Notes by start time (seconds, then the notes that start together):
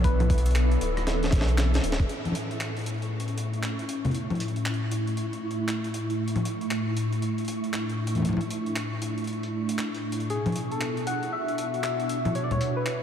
Already playing: B1 E3 B3 D4 E4 A4 E5
0.04 B4, kick, closed hi-hat
0.20 closed hi-hat, low conga
0.30 kick, closed hi-hat
0.38 closed hi-hat
0.46 closed hi-hat, cabasa
0.51 closed hi-hat
0.56 clap, closed hi-hat
0.71 closed hi-hat
0.81 D1, closed hi-hat
0.97 cross-stick, closed hi-hat
1.07 snare, closed hi-hat
1.23 snare, closed hi-hat
1.31 B1, kick, snare, closed hi-hat
1.38 snare
1.41 snare
1.46 snare, closed hi-hat
1.58 snare, clap, closed hi-hat
1.74 snare, closed hi-hat
1.84 D1, closed hi-hat
1.92 snare
2.00 kick, closed hi-hat
2.09 A2 E4 C#6, closed hi-hat
2.25 closed hi-hat, low conga
2.32 closed hi-hat, low conga
2.51 closed hi-hat
2.61 clap, closed hi-hat
2.77 closed hi-hat
2.79 A3, closed hi-hat
2.81 closed hi-hat
2.84 closed hi-hat
2.86 closed hi-hat
2.90 closed hi-hat
2.94 C#4, closed hi-hat
2.98 closed hi-hat
3.02 closed hi-hat
3.20 closed hi-hat
3.28 closed hi-hat
3.38 closed hi-hat
3.54 E4, closed hi-hat
3.63 clap, closed hi-hat
3.79 closed hi-hat
3.89 closed hi-hat
4.05 closed hi-hat, low conga
4.11 closed hi-hat
4.14 closed hi-hat
4.30 closed hi-hat, low conga
4.35 closed hi-hat
4.40 closed hi-hat
4.48 closed hi-hat
4.56 closed hi-hat
4.66 clap, closed hi-hat
4.74 closed hi-hat
4.91 closed hi-hat
5.07 closed hi-hat
5.17 closed hi-hat
5.33 closed hi-hat
5.51 closed hi-hat
5.68 clap, closed hi-hat
5.84 closed hi-hat
5.94 closed hi-hat
6.10 closed hi-hat
6.28 closed hi-hat
6.36 closed hi-hat, low conga
6.45 closed hi-hat
6.61 closed hi-hat
6.71 clap, closed hi-hat
6.88 D4
6.97 closed hi-hat
7.13 closed hi-hat
7.22 closed hi-hat
7.38 closed hi-hat
7.45 closed hi-hat
7.48 closed hi-hat
7.53 closed hi-hat
7.64 closed hi-hat
7.74 clap, closed hi-hat
7.89 closed hi-hat
8.07 closed hi-hat
8.15 closed hi-hat, low conga
8.18 low conga
8.20 low conga
8.22 closed hi-hat, low conga
8.25 low conga
8.29 low conga
8.33 low conga
8.37 closed hi-hat, low conga
8.50 closed hi-hat
8.66 closed hi-hat
8.76 clap, closed hi-hat
9.02 closed hi-hat
9.18 closed hi-hat
9.24 closed hi-hat
9.27 closed hi-hat
9.33 closed hi-hat
9.43 closed hi-hat
9.69 closed hi-hat
9.79 clap, closed hi-hat
9.95 closed hi-hat
10.12 closed hi-hat
10.20 closed hi-hat
10.30 B2 G#4, closed hi-hat
10.46 B3, closed hi-hat, low conga
10.52 closed hi-hat
10.56 closed hi-hat
10.61 closed hi-hat
10.72 A4, closed hi-hat
10.81 clap, closed hi-hat
10.97 closed hi-hat
11.07 F#5, closed hi-hat
11.21 F#4, closed hi-hat
11.33 E5
11.48 closed hi-hat
11.58 closed hi-hat
11.74 closed hi-hat
11.84 E5, clap, closed hi-hat
12.00 closed hi-hat
12.09 closed hi-hat
12.25 closed hi-hat, low conga
12.35 C#5, closed hi-hat
12.44 D5
12.51 C#5, closed hi-hat, low conga
12.61 closed hi-hat
12.77 B4
12.86 clap, closed hi-hat